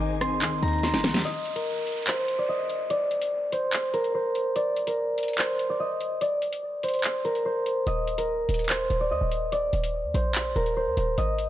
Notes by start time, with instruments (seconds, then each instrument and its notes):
Already playing: 808-style bass G#1, felt piano D#3 C4 D#4, string section D#4 G#4 C5 G#5, harp D6
0.00 felt piano D#5
0.21 felt piano C4, harp C6, cross-stick, closed hi-hat
0.42 808-style bass D#2, felt piano D#3, clap, closed hi-hat
0.52 808-style bass G#1
0.62 808-style bass D#2, felt piano D#4, harp A#5, closed hi-hat
0.68 closed hi-hat
0.73 closed hi-hat
0.78 closed hi-hat
0.83 harp C6, snare
0.94 808-style bass G1, snare
1.04 felt piano D#3, snare, closed hi-hat
1.09 808-style bass D#2
1.14 snare
1.25 harp D#5, closed hi-hat, downlifter
1.45 closed hi-hat
1.56 harp A#4, closed hi-hat
1.87 closed hi-hat
1.92 closed hi-hat
1.97 closed hi-hat
2.02 closed hi-hat
2.07 harp C5, clap
2.28 closed hi-hat
2.39 harp D5
2.49 harp D#5
2.70 closed hi-hat
2.90 harp D5, closed hi-hat
3.11 closed hi-hat
3.22 closed hi-hat
3.52 harp C5, closed hi-hat
3.73 clap, closed hi-hat
3.94 harp A#4, closed hi-hat
4.04 closed hi-hat
4.15 harp C5
4.35 closed hi-hat
4.56 harp D5, closed hi-hat
4.76 closed hi-hat
4.87 harp A#4, closed hi-hat
5.18 closed hi-hat
5.23 closed hi-hat
5.28 closed hi-hat
5.33 closed hi-hat
5.38 harp C5, clap
5.59 closed hi-hat
5.70 harp D5
5.80 harp D#5
6.01 closed hi-hat
6.21 harp D5, closed hi-hat
6.42 closed hi-hat
6.53 closed hi-hat
6.83 harp C5, closed hi-hat
6.88 closed hi-hat
6.94 closed hi-hat
6.99 closed hi-hat
7.04 clap, closed hi-hat
7.25 harp A#4, closed hi-hat
7.35 closed hi-hat
7.45 harp C5
7.66 closed hi-hat
7.87 808-style bass D#1, harp D#5, closed hi-hat
8.07 closed hi-hat
8.18 harp A#4, closed hi-hat
8.49 808-style bass D#1, closed hi-hat
8.54 closed hi-hat
8.59 closed hi-hat
8.64 closed hi-hat
8.69 harp C5, clap
8.90 808-style bass D#1, closed hi-hat
9.01 harp D5
9.11 808-style bass D#2, harp D#5
9.21 808-style bass D#1
9.32 closed hi-hat
9.52 harp D5, closed hi-hat
9.73 808-style bass D#1, closed hi-hat
9.84 closed hi-hat
10.04 808-style bass D#2
10.14 808-style bass A#1, harp C5, closed hi-hat
10.35 clap, closed hi-hat
10.56 808-style bass D#1, harp A#4, closed hi-hat
10.66 closed hi-hat
10.77 harp C5
10.87 808-style bass D#2
10.97 808-style bass D#1, closed hi-hat
11.18 808-style bass G#1, harp D#5, closed hi-hat
11.38 closed hi-hat